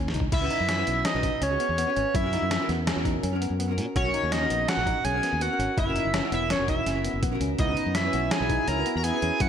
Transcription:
Already playing: D#2
0.08 snare
0.14 C#2 D#4, closed hi-hat
0.20 kick
0.32 C#2 E4 E5, kick, closed hi-hat, crash
0.41 C#4 F#4 B4
0.50 D#4, closed hi-hat
0.60 F#2
0.69 C#4, snare, closed hi-hat
0.78 C#4 F#4 B4
0.87 B1 B3, closed hi-hat
1.05 C#4 D#5, snare, closed hi-hat
1.14 B1 C#4 F#4 B4
1.23 D#4, kick, closed hi-hat
1.41 C#2 C#4 C#5, closed hi-hat
1.50 C#4 F#4 G#4
1.60 B3, closed hi-hat
1.69 E2
1.78 B3, closed hi-hat
1.86 C#4 F#4 B4
1.96 G#1 C#4, closed hi-hat
2.15 F#2 E4 E5, kick, closed hi-hat
2.23 C#4 F#4 A#4
2.33 D#4, snare, closed hi-hat
2.42 F#2
2.51 C#4, snare, closed hi-hat
2.59 C#4 F#4 A#4
2.69 E2 B3, snare, closed hi-hat
2.87 C#4, snare, closed hi-hat
2.95 E2 C#4 F#4 A#4
3.05 D#4, kick, closed hi-hat
3.23 F#2 C#4, closed hi-hat
3.32 C#4 F#4 A#4
3.41 B3, closed hi-hat
3.50 F#2
3.59 B3, closed hi-hat
3.68 C#4 F#4 A#4
3.78 A#2 C#4, closed hi-hat
3.96 B1 F#4 C#5, kick, closed hi-hat
4.04 C#4 F#4 A#4
4.14 D#4, closed hi-hat
4.23 D#2
4.32 C#4 D#5, snare, closed hi-hat
4.41 C#4 F#4 A#4
4.50 A#1 B3, closed hi-hat
4.68 C#4 F#5, snare, closed hi-hat
4.77 A#1 C#4 F#4 A#4
4.87 D#4, kick, closed hi-hat
5.04 B1 C#4 G#5, closed hi-hat
5.13 C#4 F#4 A#4
5.23 B3, snare, closed hi-hat
5.33 D#2
5.41 B3 F#5, closed hi-hat
5.49 C#4 F#4 A#4
5.59 G#1 C#4, closed hi-hat
5.77 F#1 E4 E5, kick, closed hi-hat
5.86 C#4 F#4 A#4
5.95 D#4, closed hi-hat
6.05 F#1
6.14 C#4, snare, closed hi-hat
6.22 C#4 F#4 A#4
6.32 E1 B3 E5, closed hi-hat
6.50 C#4 C#5, snare, closed hi-hat
6.59 E1 C#4 F#4 A#4
6.68 D#4 E5, kick, closed hi-hat
6.86 F#1 C#4, snare, closed hi-hat
6.95 C#4 F#4 A#4
7.04 B3, closed hi-hat
7.14 F#1
7.23 A#1 B3, kick, closed hi-hat
7.32 C#4 F#4 A#4
7.40 C#2 C#4, closed hi-hat
7.59 C#2 B3 E4 D#5, kick, closed hi-hat
7.68 C#4 F#4 B4
7.77 D#4, closed hi-hat
7.86 F#2
7.95 C#4 E5, snare, closed hi-hat
8.04 C#4 F#4 B4
8.13 B1 B3, closed hi-hat
8.31 C#4 E4 G#5, snare, closed hi-hat
8.40 B1 C#4 F#4 B4
8.50 D#4, kick, closed hi-hat
8.68 C#2 C#4 E4 A#5, closed hi-hat
8.76 C#4 F#4 B4
8.86 B3, closed hi-hat
8.96 E2 F#4 A#5
9.03 B3 E4 G#5, closed hi-hat
9.13 C#4 F#4 B4
9.22 E2 C#4, closed hi-hat
9.40 F#2 C#4 E4 F#5, kick, closed hi-hat

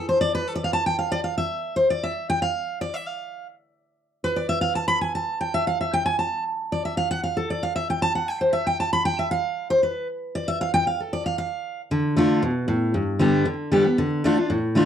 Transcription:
0.09 C5
0.21 D5
0.35 B4
0.48 A4
0.55 D5
0.64 F5
0.73 A5
0.86 G5
0.99 F5
1.12 D5
1.24 F5
1.38 E5
1.76 C5
1.90 D5
2.03 E5
2.30 G5
2.42 F5
2.81 D5
2.94 E5
3.07 F5
4.24 B4
4.36 D5
4.49 E5
4.61 F5
4.75 A5
4.88 B5
5.01 G#5
5.15 A5
5.41 G5
5.54 E5
5.67 F5
5.81 E5
5.93 G5
6.06 G#5
6.19 A5
6.72 D5
6.85 E5
6.97 F5
7.11 F#5
7.24 F5
7.37 A4
7.50 D5
7.63 F5
7.76 E5
7.90 G5
8.02 A5
8.15 F#5
8.28 G5
8.41 C5
8.53 E5
8.67 G5
8.80 A5
8.93 B5
9.05 G5
9.19 E5
9.31 F5
9.70 C5
9.83 B4
10.35 D5
10.48 E5
10.61 F5
10.74 G5
10.87 F5
11.00 A4
11.13 D5
11.26 F5
11.38 F5
11.91 D3
12.16 D3 A3 D4 F4
12.42 B2
12.68 A2
12.94 G2
13.19 D3 G3 B3 G4
13.45 D3
13.72 D3 G3 B3 G4
13.85 B3 G4
13.98 D3
14.24 D3 A3 D4 F4
14.37 D4 F4
14.50 A2
14.75 D3 A3 D4 F4

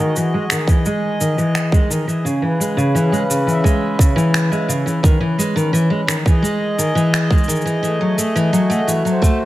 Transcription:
Already playing: F#4 G#4 D#5
0.00 D#3
0.16 E3, cabasa
0.34 G#3
0.50 D#3, finger snap, cabasa
0.68 E3, kick, cabasa
0.85 G#3, cabasa
1.21 D#3, cabasa
1.38 E3, cabasa
1.55 finger snap, cabasa
1.72 G#3, kick, cabasa
1.90 D#3, cabasa
2.08 E3, cabasa
2.25 C#3, cabasa
2.42 E3 B4
2.60 G#3, cabasa
2.77 C#3, cabasa
2.95 E3 C#4, cabasa
3.12 G#3, cabasa
3.30 C#3, cabasa
3.47 E3 E5, cabasa
3.64 G#3, kick, cabasa
3.99 C#3, kick, cabasa
4.16 E3, cabasa
4.34 finger snap, cabasa
4.52 G#3, cabasa
4.68 C#3, cabasa
4.86 E3, cabasa
5.03 D#3, kick, cabasa
5.21 E3
5.38 G#3, cabasa
5.56 D#3, cabasa
5.73 E3, cabasa
5.90 G#3
6.07 D#3, finger snap, cabasa
6.25 E3 G#4, kick, cabasa
6.30 D#5
6.42 G#3, cabasa
6.78 D#3, cabasa
6.95 E3, cabasa
7.14 finger snap, cabasa
7.30 G#3, kick, cabasa
7.38 cabasa
7.44 cabasa
7.48 D#3, cabasa
7.55 cabasa
7.61 cabasa
7.66 E3, cabasa
7.83 E3 A3, cabasa
8.01 F#3
8.18 A3, cabasa
8.36 E3, cabasa
8.53 F#3, cabasa
8.58 F#4
8.70 A3, cabasa
8.88 E3, cabasa
9.05 F#3, cabasa
9.11 C5
9.22 A3, kick, cabasa

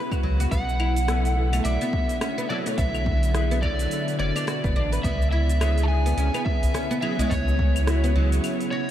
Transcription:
Already playing: C#3 B3 E4 F#4 G#4 B4
0.12 F#4, kick, claves, shaker
0.23 C#2 F#3
0.40 F#4, open hi-hat, shaker
0.51 B1 B2 D3 A3 B3 F#5, kick, open hi-hat, shaker
0.69 shaker
0.80 E4, claves
0.96 open hi-hat, shaker
1.07 B3 C#4 E4 A4, cross-stick, open hi-hat, shaker
1.25 open hi-hat, shaker
1.35 B3 E4 A4
1.53 A3, open hi-hat, claves, shaker
1.64 B1 D4 E5, open hi-hat, shaker
1.81 B3, open hi-hat, shaker
1.93 kick
2.09 open hi-hat, shaker
2.21 C#4, cross-stick, open hi-hat, claves, shaker
2.38 B3, shaker
2.49 F#3 B3 E4 A4 D5
2.65 A3 B3 E4 C#5, open hi-hat, shaker
2.78 B1 B3 E5, kick, open hi-hat, shaker
2.95 claves, shaker
3.06 kick
3.23 open hi-hat, shaker
3.34 B3 E4 G#4, cross-stick, open hi-hat, shaker
3.51 B3, open hi-hat, shaker
3.62 F#3 B3 E4 A4 D5, kick, claves
3.79 open hi-hat, shaker
3.91 open hi-hat, shaker
4.08 open hi-hat, shaker
4.19 F#1 C#4 D5
4.36 D4, open hi-hat, claves, shaker
4.47 F#4, cross-stick, open hi-hat, shaker
4.64 F#1 B3, kick, shaker
4.76 A1 D4
4.92 B4, open hi-hat, shaker
5.03 C#2 C#3 B3 E4 E5, kick, open hi-hat, shaker
5.22 shaker
5.31 E4 E5
5.49 open hi-hat, shaker
5.60 B3 C#4 E4 G#4, cross-stick, open hi-hat, claves, shaker
5.78 open hi-hat, shaker
5.83 B3 A5
5.88 E4 G#4 G#5
6.06 B3, open hi-hat, shaker
6.17 C#2 C#4, open hi-hat, shaker
6.34 B3, open hi-hat, claves, shaker
6.45 E5, kick
6.63 open hi-hat, udu, shaker
6.74 C#4, cross-stick, open hi-hat, shaker
6.91 B3, shaker
7.01 F#3 B3 E4 G#4 E5, claves
7.17 G#3 B3 E4 C#5, open hi-hat, udu, shaker
7.30 C#2 B3 C#5, kick, open hi-hat, shaker
7.48 shaker
7.59 kick
7.76 open hi-hat, claves, shaker
7.86 B3 E4 F#4, cross-stick, open hi-hat, shaker
8.04 B3, open hi-hat, shaker
8.14 F#3 B3 E4, udu
8.18 G#4
8.32 open hi-hat, shaker
8.44 open hi-hat, claves, shaker
8.61 open hi-hat, shaker
8.71 F#4 C#5

